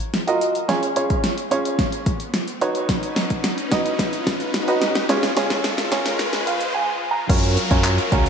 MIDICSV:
0, 0, Header, 1, 7, 480
1, 0, Start_track
1, 0, Key_signature, 6, "major"
1, 0, Tempo, 550459
1, 602, Time_signature, 4, 2, 24, 8
1, 7231, End_track
2, 0, Start_track
2, 0, Title_t, "Grand piano"
2, 0, Program_c, 0, 0
2, 238, Note_on_c, 0, 65, 84
2, 241, Note_on_c, 0, 66, 76
2, 241, Note_on_c, 0, 70, 74
2, 243, Note_on_c, 0, 75, 93
2, 450, Note_off_c, 0, 65, 0
2, 452, Note_off_c, 0, 66, 0
2, 452, Note_off_c, 0, 70, 0
2, 453, Note_off_c, 0, 75, 0
2, 596, Note_on_c, 0, 61, 84
2, 598, Note_on_c, 0, 65, 80
2, 600, Note_on_c, 0, 68, 78
2, 600, Note_on_c, 0, 73, 97
2, 739, Note_off_c, 0, 61, 0
2, 740, Note_off_c, 0, 65, 0
2, 741, Note_off_c, 0, 68, 0
2, 741, Note_off_c, 0, 73, 0
2, 838, Note_on_c, 0, 61, 86
2, 840, Note_on_c, 0, 65, 79
2, 841, Note_on_c, 0, 68, 79
2, 842, Note_on_c, 0, 73, 97
2, 1120, Note_off_c, 0, 61, 0
2, 1122, Note_off_c, 0, 65, 0
2, 1122, Note_off_c, 0, 68, 0
2, 1122, Note_off_c, 0, 73, 0
2, 1317, Note_on_c, 0, 61, 83
2, 1318, Note_on_c, 0, 65, 78
2, 1321, Note_on_c, 0, 68, 78
2, 1321, Note_on_c, 0, 73, 96
2, 1880, Note_off_c, 0, 61, 0
2, 1881, Note_off_c, 0, 65, 0
2, 1882, Note_off_c, 0, 68, 0
2, 1882, Note_off_c, 0, 73, 0
2, 2279, Note_on_c, 0, 63, 94
2, 2280, Note_on_c, 0, 66, 85
2, 2281, Note_on_c, 0, 71, 88
2, 2283, Note_on_c, 0, 73, 106
2, 3048, Note_off_c, 0, 63, 0
2, 3049, Note_off_c, 0, 66, 0
2, 3049, Note_off_c, 0, 71, 0
2, 3051, Note_off_c, 0, 73, 0
2, 3240, Note_on_c, 0, 63, 90
2, 3241, Note_on_c, 0, 66, 81
2, 3243, Note_on_c, 0, 75, 99
2, 3244, Note_on_c, 0, 71, 81
2, 3732, Note_off_c, 0, 63, 0
2, 3732, Note_off_c, 0, 66, 0
2, 3733, Note_off_c, 0, 75, 0
2, 3734, Note_off_c, 0, 71, 0
2, 4079, Note_on_c, 0, 63, 86
2, 4081, Note_on_c, 0, 66, 78
2, 4082, Note_on_c, 0, 71, 85
2, 4084, Note_on_c, 0, 75, 98
2, 4291, Note_off_c, 0, 63, 0
2, 4292, Note_off_c, 0, 66, 0
2, 4292, Note_off_c, 0, 71, 0
2, 4293, Note_off_c, 0, 75, 0
2, 4440, Note_on_c, 0, 61, 91
2, 4440, Note_on_c, 0, 65, 81
2, 4442, Note_on_c, 0, 68, 86
2, 4443, Note_on_c, 0, 73, 99
2, 4581, Note_off_c, 0, 61, 0
2, 4581, Note_off_c, 0, 65, 0
2, 4582, Note_off_c, 0, 68, 0
2, 4583, Note_off_c, 0, 73, 0
2, 4678, Note_on_c, 0, 61, 90
2, 4681, Note_on_c, 0, 65, 84
2, 4682, Note_on_c, 0, 68, 86
2, 4683, Note_on_c, 0, 73, 97
2, 4960, Note_off_c, 0, 61, 0
2, 4962, Note_off_c, 0, 65, 0
2, 4962, Note_off_c, 0, 68, 0
2, 4963, Note_off_c, 0, 73, 0
2, 5159, Note_on_c, 0, 61, 89
2, 5160, Note_on_c, 0, 65, 83
2, 5161, Note_on_c, 0, 68, 86
2, 5164, Note_on_c, 0, 73, 98
2, 5643, Note_on_c, 0, 77, 78
2, 5721, Note_off_c, 0, 61, 0
2, 5722, Note_off_c, 0, 65, 0
2, 5722, Note_off_c, 0, 68, 0
2, 5724, Note_off_c, 0, 73, 0
2, 5865, Note_off_c, 0, 77, 0
2, 5881, Note_on_c, 0, 80, 81
2, 6179, Note_off_c, 0, 80, 0
2, 6199, Note_on_c, 0, 82, 78
2, 6349, Note_off_c, 0, 82, 0
2, 6359, Note_on_c, 0, 61, 91
2, 6360, Note_on_c, 0, 65, 80
2, 6361, Note_on_c, 0, 66, 85
2, 6361, Note_on_c, 0, 70, 85
2, 6364, Note_on_c, 0, 73, 100
2, 6571, Note_off_c, 0, 61, 0
2, 6571, Note_off_c, 0, 65, 0
2, 6572, Note_off_c, 0, 66, 0
2, 6572, Note_off_c, 0, 70, 0
2, 6573, Note_off_c, 0, 73, 0
2, 6720, Note_on_c, 0, 61, 90
2, 6721, Note_on_c, 0, 65, 81
2, 6721, Note_on_c, 0, 66, 79
2, 6723, Note_on_c, 0, 70, 83
2, 6723, Note_on_c, 0, 73, 96
2, 6931, Note_off_c, 0, 61, 0
2, 6932, Note_off_c, 0, 65, 0
2, 6932, Note_off_c, 0, 66, 0
2, 6932, Note_off_c, 0, 70, 0
2, 6933, Note_off_c, 0, 73, 0
2, 7078, Note_on_c, 0, 61, 86
2, 7078, Note_on_c, 0, 65, 83
2, 7079, Note_on_c, 0, 70, 86
2, 7080, Note_on_c, 0, 66, 83
2, 7081, Note_on_c, 0, 73, 101
2, 7231, Note_off_c, 0, 61, 0
2, 7231, Note_off_c, 0, 65, 0
2, 7231, Note_off_c, 0, 66, 0
2, 7231, Note_off_c, 0, 70, 0
2, 7231, Note_off_c, 0, 73, 0
2, 7231, End_track
3, 0, Start_track
3, 0, Title_t, "Supersaw synth"
3, 0, Program_c, 1, 81
3, 2517, Note_on_c, 1, 61, 82
3, 2518, Note_on_c, 1, 63, 73
3, 2518, Note_on_c, 1, 71, 90
3, 4420, Note_off_c, 1, 61, 0
3, 4420, Note_off_c, 1, 63, 0
3, 4421, Note_off_c, 1, 71, 0
3, 4440, Note_on_c, 1, 56, 75
3, 4441, Note_on_c, 1, 65, 89
3, 4442, Note_on_c, 1, 49, 83
3, 6341, Note_off_c, 1, 56, 0
3, 6342, Note_off_c, 1, 65, 0
3, 6343, Note_off_c, 1, 49, 0
3, 6361, Note_on_c, 1, 77, 76
3, 6362, Note_on_c, 1, 70, 93
3, 6363, Note_on_c, 1, 54, 81
3, 7231, Note_off_c, 1, 54, 0
3, 7231, Note_off_c, 1, 70, 0
3, 7231, Note_off_c, 1, 77, 0
3, 7231, End_track
4, 0, Start_track
4, 0, Title_t, "Analog synth bass"
4, 0, Program_c, 2, 38
4, 6362, Note_on_c, 2, 42, 105
4, 6606, Note_off_c, 2, 42, 0
4, 6723, Note_on_c, 2, 42, 90
4, 6966, Note_off_c, 2, 42, 0
4, 7082, Note_on_c, 2, 37, 91
4, 7231, Note_off_c, 2, 37, 0
4, 7231, End_track
5, 0, Start_track
5, 0, Title_t, "Downlifter"
5, 0, Program_c, 3, 103
5, 6363, Note_on_c, 3, 60, 86
5, 7231, Note_off_c, 3, 60, 0
5, 7231, End_track
6, 0, Start_track
6, 0, Title_t, "Riser"
6, 0, Program_c, 4, 103
6, 0, Note_on_c, 4, 60, 81
6, 5881, Note_off_c, 4, 60, 0
6, 7231, End_track
7, 0, Start_track
7, 0, Title_t, "Drums"
7, 0, Note_on_c, 9, 42, 53
7, 85, Note_off_c, 9, 42, 0
7, 119, Note_on_c, 9, 38, 67
7, 119, Note_on_c, 9, 42, 86
7, 206, Note_off_c, 9, 38, 0
7, 206, Note_off_c, 9, 42, 0
7, 241, Note_on_c, 9, 42, 55
7, 328, Note_off_c, 9, 42, 0
7, 361, Note_on_c, 9, 42, 70
7, 448, Note_off_c, 9, 42, 0
7, 480, Note_on_c, 9, 42, 52
7, 568, Note_off_c, 9, 42, 0
7, 600, Note_on_c, 9, 38, 69
7, 601, Note_on_c, 9, 42, 106
7, 687, Note_off_c, 9, 38, 0
7, 688, Note_off_c, 9, 42, 0
7, 722, Note_on_c, 9, 42, 63
7, 809, Note_off_c, 9, 42, 0
7, 838, Note_on_c, 9, 42, 83
7, 925, Note_off_c, 9, 42, 0
7, 960, Note_on_c, 9, 42, 52
7, 962, Note_on_c, 9, 36, 82
7, 1047, Note_off_c, 9, 42, 0
7, 1049, Note_off_c, 9, 36, 0
7, 1079, Note_on_c, 9, 38, 75
7, 1079, Note_on_c, 9, 42, 91
7, 1166, Note_off_c, 9, 38, 0
7, 1166, Note_off_c, 9, 42, 0
7, 1199, Note_on_c, 9, 42, 55
7, 1287, Note_off_c, 9, 42, 0
7, 1320, Note_on_c, 9, 42, 78
7, 1407, Note_off_c, 9, 42, 0
7, 1442, Note_on_c, 9, 42, 60
7, 1529, Note_off_c, 9, 42, 0
7, 1558, Note_on_c, 9, 36, 94
7, 1559, Note_on_c, 9, 38, 77
7, 1560, Note_on_c, 9, 42, 86
7, 1645, Note_off_c, 9, 36, 0
7, 1646, Note_off_c, 9, 38, 0
7, 1647, Note_off_c, 9, 42, 0
7, 1678, Note_on_c, 9, 42, 62
7, 1765, Note_off_c, 9, 42, 0
7, 1799, Note_on_c, 9, 42, 75
7, 1800, Note_on_c, 9, 36, 105
7, 1886, Note_off_c, 9, 42, 0
7, 1887, Note_off_c, 9, 36, 0
7, 1917, Note_on_c, 9, 42, 54
7, 2004, Note_off_c, 9, 42, 0
7, 2038, Note_on_c, 9, 38, 83
7, 2038, Note_on_c, 9, 42, 94
7, 2125, Note_off_c, 9, 38, 0
7, 2125, Note_off_c, 9, 42, 0
7, 2159, Note_on_c, 9, 42, 54
7, 2246, Note_off_c, 9, 42, 0
7, 2280, Note_on_c, 9, 42, 68
7, 2367, Note_off_c, 9, 42, 0
7, 2397, Note_on_c, 9, 42, 53
7, 2484, Note_off_c, 9, 42, 0
7, 2519, Note_on_c, 9, 36, 119
7, 2519, Note_on_c, 9, 38, 89
7, 2519, Note_on_c, 9, 42, 105
7, 2606, Note_off_c, 9, 36, 0
7, 2606, Note_off_c, 9, 38, 0
7, 2606, Note_off_c, 9, 42, 0
7, 2641, Note_on_c, 9, 42, 62
7, 2728, Note_off_c, 9, 42, 0
7, 2757, Note_on_c, 9, 42, 78
7, 2758, Note_on_c, 9, 38, 92
7, 2844, Note_off_c, 9, 42, 0
7, 2846, Note_off_c, 9, 38, 0
7, 2879, Note_on_c, 9, 42, 53
7, 2881, Note_on_c, 9, 36, 85
7, 2966, Note_off_c, 9, 42, 0
7, 2969, Note_off_c, 9, 36, 0
7, 2999, Note_on_c, 9, 38, 95
7, 2999, Note_on_c, 9, 42, 93
7, 3086, Note_off_c, 9, 38, 0
7, 3086, Note_off_c, 9, 42, 0
7, 3120, Note_on_c, 9, 42, 55
7, 3207, Note_off_c, 9, 42, 0
7, 3240, Note_on_c, 9, 38, 95
7, 3240, Note_on_c, 9, 42, 78
7, 3241, Note_on_c, 9, 36, 95
7, 3327, Note_off_c, 9, 38, 0
7, 3327, Note_off_c, 9, 42, 0
7, 3328, Note_off_c, 9, 36, 0
7, 3362, Note_on_c, 9, 42, 62
7, 3449, Note_off_c, 9, 42, 0
7, 3479, Note_on_c, 9, 36, 96
7, 3482, Note_on_c, 9, 38, 94
7, 3483, Note_on_c, 9, 42, 84
7, 3567, Note_off_c, 9, 36, 0
7, 3569, Note_off_c, 9, 38, 0
7, 3570, Note_off_c, 9, 42, 0
7, 3601, Note_on_c, 9, 42, 63
7, 3688, Note_off_c, 9, 42, 0
7, 3721, Note_on_c, 9, 36, 111
7, 3721, Note_on_c, 9, 38, 106
7, 3722, Note_on_c, 9, 42, 72
7, 3808, Note_off_c, 9, 36, 0
7, 3809, Note_off_c, 9, 38, 0
7, 3809, Note_off_c, 9, 42, 0
7, 3837, Note_on_c, 9, 42, 55
7, 3924, Note_off_c, 9, 42, 0
7, 3959, Note_on_c, 9, 38, 107
7, 3959, Note_on_c, 9, 42, 97
7, 4046, Note_off_c, 9, 42, 0
7, 4047, Note_off_c, 9, 38, 0
7, 4079, Note_on_c, 9, 42, 55
7, 4166, Note_off_c, 9, 42, 0
7, 4200, Note_on_c, 9, 38, 103
7, 4200, Note_on_c, 9, 42, 71
7, 4287, Note_off_c, 9, 38, 0
7, 4287, Note_off_c, 9, 42, 0
7, 4319, Note_on_c, 9, 42, 53
7, 4320, Note_on_c, 9, 38, 114
7, 4406, Note_off_c, 9, 42, 0
7, 4408, Note_off_c, 9, 38, 0
7, 4440, Note_on_c, 9, 38, 105
7, 4441, Note_on_c, 9, 42, 108
7, 4527, Note_off_c, 9, 38, 0
7, 4528, Note_off_c, 9, 42, 0
7, 4561, Note_on_c, 9, 38, 109
7, 4563, Note_on_c, 9, 42, 67
7, 4648, Note_off_c, 9, 38, 0
7, 4650, Note_off_c, 9, 42, 0
7, 4679, Note_on_c, 9, 42, 84
7, 4680, Note_on_c, 9, 38, 112
7, 4766, Note_off_c, 9, 42, 0
7, 4767, Note_off_c, 9, 38, 0
7, 4799, Note_on_c, 9, 38, 110
7, 4799, Note_on_c, 9, 42, 56
7, 4802, Note_on_c, 9, 36, 88
7, 4886, Note_off_c, 9, 38, 0
7, 4886, Note_off_c, 9, 42, 0
7, 4889, Note_off_c, 9, 36, 0
7, 4920, Note_on_c, 9, 38, 109
7, 4920, Note_on_c, 9, 42, 92
7, 5007, Note_off_c, 9, 38, 0
7, 5007, Note_off_c, 9, 42, 0
7, 5040, Note_on_c, 9, 42, 60
7, 5041, Note_on_c, 9, 38, 114
7, 5127, Note_off_c, 9, 42, 0
7, 5128, Note_off_c, 9, 38, 0
7, 5160, Note_on_c, 9, 38, 115
7, 5160, Note_on_c, 9, 42, 82
7, 5161, Note_on_c, 9, 36, 95
7, 5247, Note_off_c, 9, 38, 0
7, 5247, Note_off_c, 9, 42, 0
7, 5248, Note_off_c, 9, 36, 0
7, 5281, Note_on_c, 9, 38, 115
7, 5283, Note_on_c, 9, 42, 64
7, 5368, Note_off_c, 9, 38, 0
7, 5370, Note_off_c, 9, 42, 0
7, 5400, Note_on_c, 9, 38, 118
7, 5401, Note_on_c, 9, 42, 85
7, 5487, Note_off_c, 9, 38, 0
7, 5488, Note_off_c, 9, 42, 0
7, 5519, Note_on_c, 9, 42, 61
7, 5520, Note_on_c, 9, 38, 121
7, 5606, Note_off_c, 9, 42, 0
7, 5607, Note_off_c, 9, 38, 0
7, 5642, Note_on_c, 9, 42, 75
7, 5729, Note_off_c, 9, 42, 0
7, 5760, Note_on_c, 9, 42, 58
7, 5848, Note_off_c, 9, 42, 0
7, 6361, Note_on_c, 9, 49, 107
7, 6362, Note_on_c, 9, 36, 127
7, 6362, Note_on_c, 9, 42, 111
7, 6449, Note_off_c, 9, 36, 0
7, 6449, Note_off_c, 9, 42, 0
7, 6449, Note_off_c, 9, 49, 0
7, 6484, Note_on_c, 9, 42, 65
7, 6571, Note_off_c, 9, 42, 0
7, 6601, Note_on_c, 9, 42, 88
7, 6688, Note_off_c, 9, 42, 0
7, 6721, Note_on_c, 9, 42, 56
7, 6723, Note_on_c, 9, 36, 88
7, 6808, Note_off_c, 9, 42, 0
7, 6810, Note_off_c, 9, 36, 0
7, 6840, Note_on_c, 9, 39, 125
7, 6840, Note_on_c, 9, 42, 95
7, 6927, Note_off_c, 9, 39, 0
7, 6927, Note_off_c, 9, 42, 0
7, 6961, Note_on_c, 9, 42, 58
7, 7048, Note_off_c, 9, 42, 0
7, 7081, Note_on_c, 9, 42, 85
7, 7082, Note_on_c, 9, 36, 95
7, 7168, Note_off_c, 9, 42, 0
7, 7169, Note_off_c, 9, 36, 0
7, 7204, Note_on_c, 9, 42, 63
7, 7231, Note_off_c, 9, 42, 0
7, 7231, End_track
0, 0, End_of_file